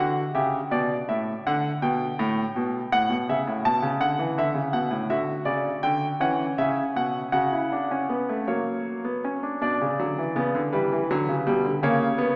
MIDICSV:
0, 0, Header, 1, 2, 480
1, 0, Start_track
1, 0, Tempo, 729927
1, 477, Time_signature, 6, 3, 24, 8
1, 3832, Tempo, 756620
1, 6232, Tempo, 736196
1, 8023, End_track
2, 0, Start_track
2, 0, Title_t, "Grand piano"
2, 0, Program_c, 0, 0
2, 0, Note_on_c, 0, 50, 77
2, 0, Note_on_c, 0, 66, 80
2, 0, Note_on_c, 0, 78, 71
2, 137, Note_off_c, 0, 78, 0
2, 139, Note_off_c, 0, 50, 0
2, 140, Note_off_c, 0, 66, 0
2, 228, Note_on_c, 0, 67, 80
2, 228, Note_on_c, 0, 76, 69
2, 231, Note_on_c, 0, 49, 70
2, 380, Note_off_c, 0, 67, 0
2, 381, Note_off_c, 0, 76, 0
2, 382, Note_off_c, 0, 49, 0
2, 469, Note_on_c, 0, 47, 86
2, 470, Note_on_c, 0, 74, 74
2, 621, Note_off_c, 0, 47, 0
2, 622, Note_off_c, 0, 74, 0
2, 714, Note_on_c, 0, 45, 68
2, 715, Note_on_c, 0, 76, 70
2, 865, Note_off_c, 0, 45, 0
2, 866, Note_off_c, 0, 76, 0
2, 964, Note_on_c, 0, 78, 77
2, 966, Note_on_c, 0, 50, 90
2, 1113, Note_off_c, 0, 78, 0
2, 1114, Note_off_c, 0, 50, 0
2, 1198, Note_on_c, 0, 47, 82
2, 1199, Note_on_c, 0, 79, 77
2, 1348, Note_off_c, 0, 47, 0
2, 1441, Note_on_c, 0, 45, 94
2, 1589, Note_off_c, 0, 45, 0
2, 1684, Note_on_c, 0, 47, 80
2, 1830, Note_off_c, 0, 47, 0
2, 1895, Note_off_c, 0, 79, 0
2, 1923, Note_on_c, 0, 78, 89
2, 1924, Note_on_c, 0, 45, 74
2, 2037, Note_off_c, 0, 45, 0
2, 2037, Note_on_c, 0, 47, 70
2, 2069, Note_off_c, 0, 78, 0
2, 2153, Note_off_c, 0, 47, 0
2, 2164, Note_on_c, 0, 49, 66
2, 2166, Note_on_c, 0, 76, 78
2, 2276, Note_off_c, 0, 49, 0
2, 2284, Note_on_c, 0, 45, 67
2, 2312, Note_off_c, 0, 76, 0
2, 2396, Note_off_c, 0, 45, 0
2, 2400, Note_on_c, 0, 47, 69
2, 2402, Note_on_c, 0, 81, 88
2, 2514, Note_off_c, 0, 47, 0
2, 2514, Note_on_c, 0, 49, 78
2, 2549, Note_off_c, 0, 81, 0
2, 2632, Note_off_c, 0, 49, 0
2, 2632, Note_on_c, 0, 50, 68
2, 2635, Note_on_c, 0, 78, 80
2, 2750, Note_off_c, 0, 50, 0
2, 2755, Note_on_c, 0, 52, 70
2, 2783, Note_off_c, 0, 78, 0
2, 2871, Note_off_c, 0, 52, 0
2, 2879, Note_on_c, 0, 50, 73
2, 2883, Note_on_c, 0, 76, 84
2, 2988, Note_on_c, 0, 49, 68
2, 2992, Note_off_c, 0, 50, 0
2, 3028, Note_off_c, 0, 76, 0
2, 3106, Note_off_c, 0, 49, 0
2, 3112, Note_on_c, 0, 47, 71
2, 3112, Note_on_c, 0, 78, 75
2, 3227, Note_off_c, 0, 47, 0
2, 3227, Note_on_c, 0, 45, 70
2, 3259, Note_off_c, 0, 78, 0
2, 3344, Note_off_c, 0, 45, 0
2, 3353, Note_on_c, 0, 76, 79
2, 3355, Note_on_c, 0, 50, 69
2, 3355, Note_on_c, 0, 66, 75
2, 3501, Note_off_c, 0, 76, 0
2, 3502, Note_off_c, 0, 50, 0
2, 3586, Note_on_c, 0, 74, 70
2, 3589, Note_on_c, 0, 49, 67
2, 3738, Note_off_c, 0, 74, 0
2, 3740, Note_off_c, 0, 49, 0
2, 3834, Note_on_c, 0, 79, 87
2, 3836, Note_on_c, 0, 50, 74
2, 3980, Note_off_c, 0, 79, 0
2, 3983, Note_off_c, 0, 50, 0
2, 4052, Note_off_c, 0, 66, 0
2, 4069, Note_on_c, 0, 52, 70
2, 4072, Note_on_c, 0, 61, 68
2, 4074, Note_on_c, 0, 78, 74
2, 4217, Note_off_c, 0, 52, 0
2, 4221, Note_off_c, 0, 78, 0
2, 4311, Note_on_c, 0, 76, 85
2, 4312, Note_on_c, 0, 49, 75
2, 4459, Note_off_c, 0, 49, 0
2, 4459, Note_off_c, 0, 76, 0
2, 4549, Note_on_c, 0, 47, 61
2, 4554, Note_on_c, 0, 78, 75
2, 4698, Note_off_c, 0, 47, 0
2, 4701, Note_off_c, 0, 78, 0
2, 4768, Note_off_c, 0, 61, 0
2, 4781, Note_on_c, 0, 78, 73
2, 4785, Note_on_c, 0, 66, 67
2, 4786, Note_on_c, 0, 49, 69
2, 4904, Note_off_c, 0, 66, 0
2, 4910, Note_on_c, 0, 64, 66
2, 5027, Note_off_c, 0, 64, 0
2, 5035, Note_on_c, 0, 62, 62
2, 5149, Note_off_c, 0, 62, 0
2, 5155, Note_on_c, 0, 61, 64
2, 5269, Note_off_c, 0, 61, 0
2, 5271, Note_on_c, 0, 59, 67
2, 5387, Note_off_c, 0, 59, 0
2, 5396, Note_on_c, 0, 57, 63
2, 5485, Note_off_c, 0, 78, 0
2, 5488, Note_off_c, 0, 49, 0
2, 5510, Note_off_c, 0, 57, 0
2, 5511, Note_on_c, 0, 73, 64
2, 5513, Note_on_c, 0, 58, 70
2, 5515, Note_on_c, 0, 54, 69
2, 5863, Note_off_c, 0, 58, 0
2, 5873, Note_on_c, 0, 59, 66
2, 5990, Note_off_c, 0, 59, 0
2, 6000, Note_on_c, 0, 61, 62
2, 6113, Note_off_c, 0, 61, 0
2, 6118, Note_on_c, 0, 62, 58
2, 6211, Note_off_c, 0, 73, 0
2, 6213, Note_off_c, 0, 54, 0
2, 6226, Note_off_c, 0, 62, 0
2, 6235, Note_on_c, 0, 47, 69
2, 6235, Note_on_c, 0, 62, 63
2, 6239, Note_on_c, 0, 74, 71
2, 6352, Note_off_c, 0, 47, 0
2, 6365, Note_on_c, 0, 49, 65
2, 6385, Note_off_c, 0, 62, 0
2, 6477, Note_on_c, 0, 50, 61
2, 6478, Note_off_c, 0, 49, 0
2, 6483, Note_on_c, 0, 54, 76
2, 6595, Note_off_c, 0, 50, 0
2, 6606, Note_on_c, 0, 52, 65
2, 6631, Note_off_c, 0, 54, 0
2, 6719, Note_off_c, 0, 52, 0
2, 6720, Note_on_c, 0, 59, 82
2, 6723, Note_on_c, 0, 49, 70
2, 6838, Note_off_c, 0, 49, 0
2, 6843, Note_on_c, 0, 50, 75
2, 6869, Note_off_c, 0, 59, 0
2, 6942, Note_off_c, 0, 74, 0
2, 6959, Note_off_c, 0, 50, 0
2, 6959, Note_on_c, 0, 71, 67
2, 6962, Note_on_c, 0, 55, 84
2, 6963, Note_on_c, 0, 52, 62
2, 7078, Note_off_c, 0, 52, 0
2, 7088, Note_on_c, 0, 52, 73
2, 7111, Note_off_c, 0, 55, 0
2, 7201, Note_off_c, 0, 52, 0
2, 7207, Note_on_c, 0, 50, 78
2, 7207, Note_on_c, 0, 54, 94
2, 7320, Note_off_c, 0, 50, 0
2, 7324, Note_on_c, 0, 49, 67
2, 7353, Note_off_c, 0, 54, 0
2, 7438, Note_off_c, 0, 49, 0
2, 7442, Note_on_c, 0, 55, 87
2, 7445, Note_on_c, 0, 47, 73
2, 7557, Note_off_c, 0, 47, 0
2, 7557, Note_on_c, 0, 50, 66
2, 7589, Note_off_c, 0, 55, 0
2, 7655, Note_off_c, 0, 71, 0
2, 7673, Note_off_c, 0, 50, 0
2, 7676, Note_on_c, 0, 49, 80
2, 7680, Note_on_c, 0, 58, 92
2, 7682, Note_on_c, 0, 73, 82
2, 7826, Note_off_c, 0, 58, 0
2, 7908, Note_on_c, 0, 59, 88
2, 8022, Note_off_c, 0, 49, 0
2, 8023, Note_off_c, 0, 59, 0
2, 8023, Note_off_c, 0, 73, 0
2, 8023, End_track
0, 0, End_of_file